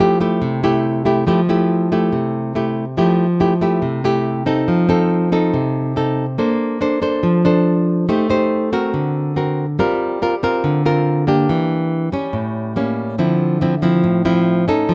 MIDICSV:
0, 0, Header, 1, 2, 480
1, 0, Start_track
1, 0, Key_signature, -1, "major"
1, 0, Tempo, 425532
1, 1440, Time_signature, 4, 2, 24, 8
1, 16855, End_track
2, 0, Start_track
2, 0, Title_t, "Nylon-string guitar"
2, 0, Program_c, 0, 24
2, 0, Note_on_c, 0, 53, 60
2, 0, Note_on_c, 0, 57, 55
2, 0, Note_on_c, 0, 64, 50
2, 5, Note_on_c, 0, 67, 61
2, 199, Note_off_c, 0, 57, 0
2, 200, Note_off_c, 0, 64, 0
2, 204, Note_off_c, 0, 67, 0
2, 231, Note_on_c, 0, 57, 56
2, 237, Note_on_c, 0, 64, 53
2, 241, Note_on_c, 0, 67, 60
2, 452, Note_off_c, 0, 53, 0
2, 469, Note_on_c, 0, 48, 65
2, 677, Note_off_c, 0, 57, 0
2, 679, Note_off_c, 0, 64, 0
2, 682, Note_off_c, 0, 67, 0
2, 715, Note_on_c, 0, 57, 55
2, 719, Note_on_c, 0, 64, 59
2, 726, Note_on_c, 0, 67, 61
2, 1159, Note_off_c, 0, 57, 0
2, 1162, Note_off_c, 0, 64, 0
2, 1163, Note_off_c, 0, 67, 0
2, 1188, Note_on_c, 0, 57, 51
2, 1193, Note_on_c, 0, 64, 53
2, 1200, Note_on_c, 0, 67, 54
2, 1396, Note_off_c, 0, 57, 0
2, 1398, Note_off_c, 0, 64, 0
2, 1402, Note_off_c, 0, 67, 0
2, 1411, Note_off_c, 0, 48, 0
2, 1429, Note_on_c, 0, 53, 58
2, 1436, Note_on_c, 0, 57, 48
2, 1443, Note_on_c, 0, 67, 55
2, 1444, Note_on_c, 0, 64, 51
2, 1578, Note_off_c, 0, 57, 0
2, 1579, Note_off_c, 0, 64, 0
2, 1583, Note_off_c, 0, 67, 0
2, 1681, Note_on_c, 0, 57, 52
2, 1686, Note_on_c, 0, 64, 57
2, 1692, Note_on_c, 0, 67, 59
2, 2122, Note_off_c, 0, 57, 0
2, 2125, Note_off_c, 0, 64, 0
2, 2128, Note_off_c, 0, 67, 0
2, 2165, Note_on_c, 0, 57, 52
2, 2170, Note_on_c, 0, 64, 55
2, 2174, Note_on_c, 0, 67, 56
2, 2373, Note_off_c, 0, 53, 0
2, 2397, Note_on_c, 0, 48, 58
2, 2845, Note_off_c, 0, 57, 0
2, 2847, Note_off_c, 0, 64, 0
2, 2849, Note_off_c, 0, 67, 0
2, 2880, Note_on_c, 0, 57, 46
2, 2887, Note_on_c, 0, 64, 47
2, 2890, Note_on_c, 0, 67, 53
2, 3203, Note_off_c, 0, 57, 0
2, 3207, Note_off_c, 0, 64, 0
2, 3207, Note_off_c, 0, 67, 0
2, 3336, Note_off_c, 0, 48, 0
2, 3355, Note_on_c, 0, 53, 63
2, 3359, Note_on_c, 0, 57, 45
2, 3361, Note_on_c, 0, 64, 48
2, 3367, Note_on_c, 0, 67, 55
2, 3669, Note_off_c, 0, 57, 0
2, 3671, Note_off_c, 0, 64, 0
2, 3672, Note_off_c, 0, 67, 0
2, 3836, Note_on_c, 0, 57, 47
2, 3843, Note_on_c, 0, 64, 52
2, 3844, Note_on_c, 0, 67, 57
2, 3980, Note_off_c, 0, 57, 0
2, 3982, Note_off_c, 0, 64, 0
2, 3984, Note_off_c, 0, 67, 0
2, 4076, Note_on_c, 0, 57, 53
2, 4083, Note_on_c, 0, 64, 53
2, 4089, Note_on_c, 0, 67, 58
2, 4296, Note_off_c, 0, 53, 0
2, 4310, Note_on_c, 0, 48, 64
2, 4522, Note_off_c, 0, 57, 0
2, 4524, Note_off_c, 0, 64, 0
2, 4527, Note_off_c, 0, 67, 0
2, 4560, Note_on_c, 0, 57, 50
2, 4564, Note_on_c, 0, 64, 57
2, 4570, Note_on_c, 0, 67, 61
2, 5003, Note_off_c, 0, 57, 0
2, 5005, Note_off_c, 0, 64, 0
2, 5008, Note_off_c, 0, 67, 0
2, 5032, Note_on_c, 0, 60, 54
2, 5037, Note_on_c, 0, 63, 48
2, 5044, Note_on_c, 0, 69, 51
2, 5253, Note_off_c, 0, 48, 0
2, 5279, Note_on_c, 0, 53, 62
2, 5479, Note_off_c, 0, 60, 0
2, 5481, Note_off_c, 0, 63, 0
2, 5485, Note_off_c, 0, 69, 0
2, 5512, Note_on_c, 0, 60, 58
2, 5521, Note_on_c, 0, 63, 51
2, 5522, Note_on_c, 0, 69, 62
2, 5960, Note_off_c, 0, 60, 0
2, 5962, Note_off_c, 0, 63, 0
2, 5964, Note_off_c, 0, 69, 0
2, 6000, Note_on_c, 0, 60, 58
2, 6005, Note_on_c, 0, 63, 60
2, 6010, Note_on_c, 0, 69, 58
2, 6217, Note_off_c, 0, 53, 0
2, 6244, Note_on_c, 0, 48, 64
2, 6683, Note_off_c, 0, 60, 0
2, 6686, Note_off_c, 0, 63, 0
2, 6688, Note_off_c, 0, 69, 0
2, 6725, Note_on_c, 0, 60, 46
2, 6733, Note_on_c, 0, 63, 52
2, 6734, Note_on_c, 0, 69, 52
2, 7047, Note_off_c, 0, 60, 0
2, 7050, Note_off_c, 0, 63, 0
2, 7051, Note_off_c, 0, 69, 0
2, 7180, Note_off_c, 0, 48, 0
2, 7200, Note_on_c, 0, 58, 62
2, 7205, Note_on_c, 0, 62, 48
2, 7207, Note_on_c, 0, 69, 50
2, 7212, Note_on_c, 0, 72, 55
2, 7645, Note_off_c, 0, 62, 0
2, 7647, Note_off_c, 0, 69, 0
2, 7649, Note_off_c, 0, 72, 0
2, 7679, Note_on_c, 0, 62, 49
2, 7685, Note_on_c, 0, 69, 53
2, 7690, Note_on_c, 0, 72, 63
2, 7883, Note_off_c, 0, 62, 0
2, 7886, Note_off_c, 0, 69, 0
2, 7888, Note_off_c, 0, 72, 0
2, 7914, Note_on_c, 0, 62, 52
2, 7920, Note_on_c, 0, 69, 56
2, 7926, Note_on_c, 0, 72, 63
2, 8138, Note_off_c, 0, 58, 0
2, 8157, Note_on_c, 0, 53, 64
2, 8361, Note_off_c, 0, 62, 0
2, 8364, Note_off_c, 0, 69, 0
2, 8365, Note_off_c, 0, 72, 0
2, 8402, Note_on_c, 0, 62, 59
2, 8410, Note_on_c, 0, 72, 62
2, 8411, Note_on_c, 0, 69, 57
2, 9085, Note_off_c, 0, 62, 0
2, 9087, Note_off_c, 0, 69, 0
2, 9089, Note_off_c, 0, 72, 0
2, 9097, Note_off_c, 0, 53, 0
2, 9122, Note_on_c, 0, 63, 49
2, 9123, Note_on_c, 0, 57, 65
2, 9126, Note_on_c, 0, 67, 47
2, 9131, Note_on_c, 0, 72, 55
2, 9324, Note_off_c, 0, 63, 0
2, 9327, Note_off_c, 0, 67, 0
2, 9329, Note_off_c, 0, 72, 0
2, 9356, Note_on_c, 0, 63, 60
2, 9366, Note_on_c, 0, 67, 58
2, 9367, Note_on_c, 0, 72, 59
2, 9802, Note_off_c, 0, 63, 0
2, 9804, Note_off_c, 0, 67, 0
2, 9807, Note_off_c, 0, 72, 0
2, 9843, Note_on_c, 0, 60, 61
2, 9848, Note_on_c, 0, 66, 58
2, 9854, Note_on_c, 0, 70, 63
2, 10060, Note_off_c, 0, 57, 0
2, 10081, Note_on_c, 0, 50, 63
2, 10525, Note_off_c, 0, 60, 0
2, 10528, Note_off_c, 0, 66, 0
2, 10529, Note_off_c, 0, 70, 0
2, 10562, Note_on_c, 0, 60, 51
2, 10567, Note_on_c, 0, 66, 49
2, 10575, Note_on_c, 0, 70, 51
2, 10885, Note_off_c, 0, 60, 0
2, 10888, Note_off_c, 0, 66, 0
2, 10892, Note_off_c, 0, 70, 0
2, 11019, Note_off_c, 0, 50, 0
2, 11043, Note_on_c, 0, 55, 64
2, 11043, Note_on_c, 0, 60, 49
2, 11049, Note_on_c, 0, 65, 43
2, 11055, Note_on_c, 0, 70, 56
2, 11484, Note_off_c, 0, 60, 0
2, 11488, Note_off_c, 0, 65, 0
2, 11491, Note_off_c, 0, 70, 0
2, 11527, Note_on_c, 0, 60, 51
2, 11531, Note_on_c, 0, 65, 46
2, 11537, Note_on_c, 0, 70, 57
2, 11666, Note_off_c, 0, 60, 0
2, 11669, Note_off_c, 0, 65, 0
2, 11670, Note_off_c, 0, 70, 0
2, 11766, Note_on_c, 0, 60, 50
2, 11772, Note_on_c, 0, 65, 55
2, 11775, Note_on_c, 0, 70, 63
2, 11980, Note_off_c, 0, 55, 0
2, 12002, Note_on_c, 0, 50, 61
2, 12206, Note_off_c, 0, 60, 0
2, 12210, Note_off_c, 0, 65, 0
2, 12210, Note_off_c, 0, 70, 0
2, 12244, Note_on_c, 0, 60, 55
2, 12249, Note_on_c, 0, 65, 57
2, 12253, Note_on_c, 0, 70, 60
2, 12686, Note_off_c, 0, 60, 0
2, 12687, Note_off_c, 0, 65, 0
2, 12690, Note_off_c, 0, 70, 0
2, 12714, Note_on_c, 0, 58, 52
2, 12721, Note_on_c, 0, 62, 52
2, 12727, Note_on_c, 0, 67, 53
2, 12938, Note_off_c, 0, 50, 0
2, 12965, Note_on_c, 0, 52, 64
2, 13640, Note_off_c, 0, 58, 0
2, 13644, Note_off_c, 0, 62, 0
2, 13647, Note_off_c, 0, 67, 0
2, 13671, Note_off_c, 0, 52, 0
2, 13675, Note_on_c, 0, 55, 54
2, 13687, Note_on_c, 0, 61, 63
2, 13909, Note_on_c, 0, 45, 65
2, 14361, Note_off_c, 0, 55, 0
2, 14367, Note_off_c, 0, 61, 0
2, 14393, Note_on_c, 0, 55, 46
2, 14400, Note_on_c, 0, 58, 51
2, 14406, Note_on_c, 0, 61, 55
2, 14852, Note_off_c, 0, 45, 0
2, 14859, Note_off_c, 0, 55, 0
2, 14862, Note_off_c, 0, 58, 0
2, 14864, Note_off_c, 0, 61, 0
2, 14872, Note_on_c, 0, 50, 66
2, 14875, Note_on_c, 0, 53, 51
2, 14877, Note_on_c, 0, 60, 49
2, 14884, Note_on_c, 0, 64, 55
2, 15320, Note_off_c, 0, 53, 0
2, 15322, Note_off_c, 0, 60, 0
2, 15324, Note_off_c, 0, 64, 0
2, 15355, Note_on_c, 0, 53, 55
2, 15364, Note_on_c, 0, 60, 50
2, 15366, Note_on_c, 0, 64, 53
2, 15500, Note_off_c, 0, 53, 0
2, 15502, Note_off_c, 0, 60, 0
2, 15505, Note_off_c, 0, 64, 0
2, 15592, Note_on_c, 0, 53, 57
2, 15600, Note_on_c, 0, 60, 60
2, 15606, Note_on_c, 0, 64, 67
2, 15813, Note_off_c, 0, 50, 0
2, 15834, Note_on_c, 0, 45, 65
2, 16039, Note_off_c, 0, 53, 0
2, 16041, Note_off_c, 0, 60, 0
2, 16046, Note_off_c, 0, 64, 0
2, 16075, Note_on_c, 0, 53, 60
2, 16078, Note_on_c, 0, 60, 55
2, 16080, Note_on_c, 0, 64, 62
2, 16520, Note_off_c, 0, 53, 0
2, 16521, Note_off_c, 0, 60, 0
2, 16523, Note_off_c, 0, 64, 0
2, 16556, Note_on_c, 0, 61, 50
2, 16564, Note_on_c, 0, 63, 55
2, 16567, Note_on_c, 0, 69, 61
2, 16773, Note_off_c, 0, 45, 0
2, 16795, Note_on_c, 0, 53, 60
2, 16855, Note_off_c, 0, 53, 0
2, 16855, Note_off_c, 0, 61, 0
2, 16855, Note_off_c, 0, 63, 0
2, 16855, Note_off_c, 0, 69, 0
2, 16855, End_track
0, 0, End_of_file